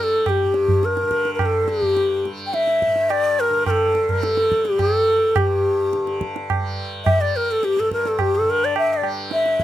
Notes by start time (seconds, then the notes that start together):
Already playing: G2 D3 G3
0.03 A4
0.26 G4, tabla na, tabla ge
0.43 G2
0.54 tabla te
0.68 tabla ge
0.83 A#4, tabla te
0.97 tabla te
1.03 D3
1.11 tabla ke
1.25 tabla te
1.34 A#4
1.39 A#4, tabla na, tabla ge
1.46 A4
1.64 G3, tabla te
1.69 G4
1.82 tabla ge
1.97 tabla te
2.25 G3, tabla te
2.46 G5
2.54 E5, tabla te
2.67 tabla te
2.82 tabla ke
2.87 G2
2.96 tabla te
3.10 D5, tabla na
3.40 A#4
3.50 D3
3.66 A4 A#4, tabla na, tabla ge
3.95 tabla te
4.09 G3 A#4, tabla ge
4.23 A4, tabla te
4.37 tabla te
4.52 tabla ke
4.65 G4, tabla te
4.72 G3
4.79 A4, tabla na, tabla ge
5.34 G2 G4, tabla na, tabla ge
5.93 D3, tabla te
6.07 tabla te
6.21 tabla ke
6.36 tabla te
6.50 tabla na, tabla ge
6.57 G3
7.05 E5, tabla na, tabla ge
7.17 G3 D5
7.36 A#4
7.51 A4
7.63 G4, tabla te
7.77 G2 A4, tabla te
7.91 A#4, tabla ke
8.05 A4, tabla te
8.19 G4, tabla na, tabla ge
8.35 A4
8.41 D3
8.50 A#4
8.65 D5
8.76 E5, tabla na
8.93 D5
9.02 G3, tabla na
9.31 E5, tabla te
9.46 tabla te
9.60 E5, tabla ke